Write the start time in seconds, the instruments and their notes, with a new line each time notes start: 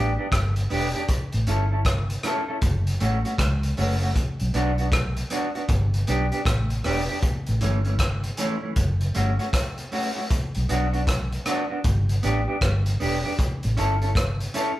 Already playing: fingered electric bass A1, clean electric guitar D4 G4
0.18 clean electric guitar B3 D4 G4
0.32 fingered electric bass G1, kick, cross-stick, closed hi-hat
0.56 closed hi-hat
0.70 fingered electric bass E1, clean electric guitar B3 D4 G4, open hi-hat
0.95 clean electric guitar B3 D4 G4, closed hi-hat
1.08 kick, closed hi-hat
1.32 fingered electric bass A1, closed hi-hat
1.47 fingered electric bass G1, clean electric guitar C#4 E4 A4, closed hi-hat
1.72 clean electric guitar C#4 E4 A4
1.85 kick, cross-stick, closed hi-hat
2.10 closed hi-hat
2.23 clean electric guitar C#4 E4 A4, cross-stick, closed hi-hat
2.48 clean electric guitar C#4 E4 A4
2.62 fingered electric bass F#1, kick, closed hi-hat
2.87 closed hi-hat
3.00 fingered electric bass A1, clean electric guitar A3 C#4 F#4, closed hi-hat
3.25 clean electric guitar A3 C#4 F#4, closed hi-hat
3.38 fingered electric bass C#2, kick, cross-stick, closed hi-hat
3.63 closed hi-hat
3.77 fingered electric bass F#1, clean electric guitar A3 C#4 F#4, open hi-hat
4.02 clean electric guitar A3 C#4 F#4
4.16 kick, closed hi-hat
4.40 fingered electric bass B1, closed hi-hat
4.54 fingered electric bass B1, clean electric guitar B3 D4 F#4, closed hi-hat
4.78 clean electric guitar B3 D4 F#4, closed hi-hat
4.92 kick, cross-stick, closed hi-hat
5.17 closed hi-hat
5.30 clean electric guitar B3 D4 F#4, closed hi-hat
5.55 clean electric guitar B3 D4 F#4, closed hi-hat
5.69 fingered electric bass G1, kick, closed hi-hat
5.94 closed hi-hat
6.07 fingered electric bass B1, clean electric guitar B3 D4 G4, closed hi-hat
6.32 clean electric guitar B3 D4 G4, closed hi-hat
6.45 fingered electric bass A1, kick, cross-stick, closed hi-hat
6.70 closed hi-hat
6.84 fingered electric bass E1, clean electric guitar B3 D4 G4, cross-stick, open hi-hat
7.09 clean electric guitar B3 D4 G4
7.23 kick, closed hi-hat
7.47 fingered electric bass A1, closed hi-hat
7.61 fingered electric bass G1, clean electric guitar E3 A3 C#4, closed hi-hat
7.85 clean electric guitar E3 A3 C#4, closed hi-hat
7.99 kick, cross-stick, closed hi-hat
8.24 closed hi-hat
8.37 clean electric guitar E3 A3 C#4, closed hi-hat
8.63 clean electric guitar E3 A3 C#4
8.76 fingered electric bass F#1, kick, closed hi-hat
9.01 closed hi-hat
9.14 fingered electric bass G1, clean electric guitar A3 C#4 F#4, closed hi-hat
9.39 clean electric guitar A3 C#4 F#4, closed hi-hat
9.53 kick, cross-stick, closed hi-hat
9.78 closed hi-hat
9.92 clean electric guitar A3 C#4 F#4, open hi-hat
10.16 clean electric guitar A3 C#4 F#4
10.31 kick, closed hi-hat
10.55 fingered electric bass B1, closed hi-hat
10.69 fingered electric bass B1, clean electric guitar B3 D4 F#4, closed hi-hat
10.93 clean electric guitar B3 D4 F#4, closed hi-hat
11.07 kick, cross-stick, closed hi-hat
11.32 closed hi-hat
11.46 clean electric guitar B3 D4 F#4, cross-stick, closed hi-hat
11.70 clean electric guitar B3 D4 F#4
11.84 fingered electric bass G1, kick, closed hi-hat
12.09 closed hi-hat
12.23 fingered electric bass A1, clean electric guitar B3 D4 G4, closed hi-hat
12.48 clean electric guitar B3 D4 G4
12.61 fingered electric bass G1, kick, cross-stick, closed hi-hat
12.86 closed hi-hat
13.00 fingered electric bass E1, clean electric guitar B3 D4 G4, open hi-hat
13.24 clean electric guitar B3 D4 G4
13.39 kick, closed hi-hat
13.63 fingered electric bass A1, closed hi-hat
13.77 fingered electric bass G1, clean electric guitar C#4 E4 A4, closed hi-hat
14.02 clean electric guitar C#4 E4 A4, closed hi-hat
14.15 kick, cross-stick, closed hi-hat
14.40 closed hi-hat
14.54 clean electric guitar C#4 E4 A4, closed hi-hat